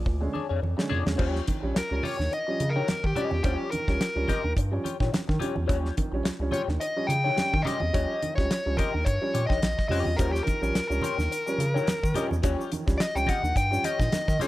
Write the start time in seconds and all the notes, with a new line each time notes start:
0.05 D2 A#2, muted clean electric guitar stroke, kick, muted conga
0.21 D3 G#3 C#4, muted clean electric guitar stroke
0.34 G#3 C#4 D4 G#4 C#5, muted conga, high conga
0.49 F2 D4 G#4 C#5
0.62 F2, muted clean electric guitar stroke, muted conga, high conga
0.77 D3 G#3 C#4, muted clean electric guitar stroke, snare
0.89 F2 A#2 D4 G#4 C#5, low conga
1.05 E2 D3 G#3 C#4, muted clean electric guitar stroke, snare, high conga
1.16 D#2 F3 G3 C#4 E4 F#4 C5, kick, crash, muted conga
1.27 F4 G4 C#5
1.36 snare
1.47 D#3, kick, closed hi-hat, high conga
1.60 A#1 F3 G3 C#4, muted clean electric guitar stroke
1.74 C#2 A#4, muted clean electric guitar stroke, snare, closed hi-hat, muted conga
1.89 C#2 F3 G3 C#4, muted clean electric guitar stroke
2.03 F4 G4 C#5, open hi-hat, high conga, low conga
2.18 D#2 D#3, muted clean electric guitar stroke, snare
2.31 D#5, muted clean electric guitar stroke, closed hi-hat, muted conga
2.47 F3 G3 C#4, muted clean electric guitar stroke
2.60 C#3, closed hi-hat, muted conga, high conga
2.70 A#4
2.76 D#3 F4 G4 C#5
2.88 snare, closed hi-hat, muted conga, high conga
3.03 D#3 G4, muted clean electric guitar stroke, kick
3.15 F3 G3 C#4 F4 G4 D#5, closed hi-hat, low conga
3.31 E2, muted clean electric guitar stroke, high conga
3.43 D#2 F3 G3 C#4 E4 F#4 G4 C5, kick, closed hi-hat, muted conga
3.54 F4 G4 C#5
3.71 D#3 A#4, closed hi-hat, high conga
3.88 C#2 F3 G3 C#4, muted clean electric guitar stroke, kick, snare
4.01 muted clean electric guitar stroke, snare, closed hi-hat
4.15 C#2 F3 G3 C#4, muted clean electric guitar stroke
4.28 F4 G4 D#5, kick, snare, closed hi-hat, muted conga, high conga, low conga
4.44 D#2 D#3, muted clean electric guitar stroke
4.56 G2, muted clean electric guitar stroke, kick, closed hi-hat, muted conga
4.72 F3 G3 C#4, muted clean electric guitar stroke
4.84 F4 G4 C#5, closed hi-hat, muted conga, high conga
5.00 A#2 D#3 F4 G4 C#5, kick, snare
5.12 G3 C#4, muted clean electric guitar stroke, snare, closed hi-hat, muted conga, high conga
5.28 D#3, muted clean electric guitar stroke, kick, snare
5.39 F3 G3 C#4 F4 G4 C#5, closed hi-hat, muted conga, low conga
5.56 E2, muted clean electric guitar stroke, high conga
5.67 D#2 F3 G3 C#4 F4 G4 C#5, kick, closed hi-hat, muted conga
5.85 snare
5.97 D#3, kick, closed hi-hat, muted conga, high conga
6.12 A#1 F3 G3 C#4, muted clean electric guitar stroke
6.24 C#2, muted clean electric guitar stroke, snare, closed hi-hat, muted conga
6.40 C#2 F3 G3 C#4, muted clean electric guitar stroke
6.51 F4 G4 C#5, closed hi-hat, high conga, low conga
6.68 D#2 D#3, muted clean electric guitar stroke, snare
6.80 D#5, muted clean electric guitar stroke, closed hi-hat
6.96 F3 G3 C#4, muted clean electric guitar stroke
7.07 C#3 G5, closed hi-hat, muted conga, high conga
7.24 D#3 F4 G4 C#5
7.36 G3 C#4, snare, closed hi-hat, muted conga, high conga
7.52 D#3, muted clean electric guitar stroke, kick
7.63 G3 C#4 F4 G4 D#5, muted conga, low conga
7.67 snare, closed hi-hat
7.80 E2, muted clean electric guitar stroke, high conga
7.93 D#2 F3 G3 C#4 F4 G4 C#5, kick, closed hi-hat, muted conga
8.22 D#3, closed hi-hat, high conga
8.36 C#2 F3 G3 C#4 C#5, muted clean electric guitar stroke, kick, snare
8.50 muted clean electric guitar stroke, snare, closed hi-hat, muted conga
8.66 C#2 F3 G3 C#4, muted clean electric guitar stroke
8.77 F4 G4 A#4 D#5, kick, closed hi-hat, muted conga, high conga, low conga
8.94 D#2 D#3, muted clean electric guitar stroke
9.05 G2 C#5, muted clean electric guitar stroke, kick, closed hi-hat, muted conga
9.21 F3 G3 C#4, muted clean electric guitar stroke
9.34 A#2 F4 G4 C#5, closed hi-hat, muted conga, high conga
9.47 A#1 D#3 F4 G4 C#5 D#5, kick
9.51 snare
9.61 A#1, muted clean electric guitar stroke, snare, closed hi-hat, muted conga, high conga
9.77 muted clean electric guitar stroke, kick, snare
9.88 F2 F3 G3 C#4 F4 G4 C#5 D#5, open hi-hat, low conga
10.05 E2, muted clean electric guitar stroke, high conga
10.17 D#2 F3 G3 C#4 E4 F#4 A#4 C5, kick, closed hi-hat, muted conga, shaker
10.30 F4 G4 C#5
10.35 snare, shaker
10.44 D#3 A#4, kick, closed hi-hat, high conga
10.48 shaker
10.62 A#1 F3 G3 C#4, muted clean electric guitar stroke, shaker
10.74 C#2, muted clean electric guitar stroke, snare, closed hi-hat, muted conga, shaker
10.88 C#2 F3 G3 C#4 A#4, muted clean electric guitar stroke, shaker
11.02 F4 G4 C#5, closed hi-hat, muted conga, high conga, low conga, shaker
11.18 D#2 D#3, muted clean electric guitar stroke, snare, shaker
11.30 muted clean electric guitar stroke, closed hi-hat, muted conga, shaker
11.46 F3 G3 C#4, muted clean electric guitar stroke, shaker
11.58 C#3, closed hi-hat, high conga, shaker
11.74 D#3 F4 G4 C#5, shaker
11.87 snare, closed hi-hat, high conga, shaker
12.03 D#3, muted clean electric guitar stroke, kick, shaker
12.14 F3 G3 C#4 F4 G4 D#5, snare, closed hi-hat, muted conga, low conga, shaker
12.30 E2, muted clean electric guitar stroke, high conga, shaker
12.43 D#2 F3 G3 C#4 F4 G4 C#5, kick, closed hi-hat, muted conga, shaker
12.61 shaker
12.72 D#3, closed hi-hat, muted conga, high conga, shaker
12.86 C#2 F3 G3 C#4, muted clean electric guitar stroke, kick, snare, shaker
12.98 D5 D#5, muted clean electric guitar stroke, snare, closed hi-hat, muted conga, shaker
13.15 C#2 F3 G3 C#4 G5, muted clean electric guitar stroke, shaker
13.26 F4 G4 D#5 F#5, kick, snare, closed hi-hat, high conga, low conga, shaker
13.43 D#2 D#3, muted clean electric guitar stroke, shaker
13.55 G2 G5, muted clean electric guitar stroke, kick, closed hi-hat, muted conga, shaker
13.71 F3 G3 C#4, muted clean electric guitar stroke, shaker
13.83 F4 G4 C#5 D#5, closed hi-hat, muted conga, high conga, shaker
13.99 A#2 D#3, muted clean electric guitar stroke, kick, snare, shaker
14.11 D#3, muted clean electric guitar stroke, snare, closed hi-hat, muted conga, high conga, shaker
14.28 D#3, muted clean electric guitar stroke, kick, snare, shaker
14.39 F3 G3 C#4 F4 G4 A#4 C#5, closed hi-hat, muted conga, low conga, shaker